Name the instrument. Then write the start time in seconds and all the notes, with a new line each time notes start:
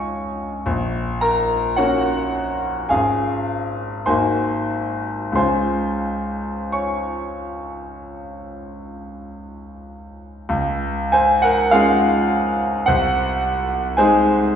grand piano
Already playing: G#3 C#4 F4 C#5 D#5 G#5 C#6 D#6
0.66 A#1
1.21 A#4 A#5
1.76 A#3 C#4 F#4 C#5 F#5
2.89 G#1 C#4 F4 G#4 F5 G#5
4.06 G#1 A#3 D#4 F#4 C5 G#5 C6
5.32 C#2 G#3 C#4 F4 C6
5.36 C5 G#5
6.72 C#5 G#5 C#6
10.49 C#2
11.12 C5 G#5
11.42 A#4 F#5
11.71 G#3 C#4 F4 G#4 F5
12.86 C2 C5 F#5
13.97 G#3 D#4 G#4 C5 G#5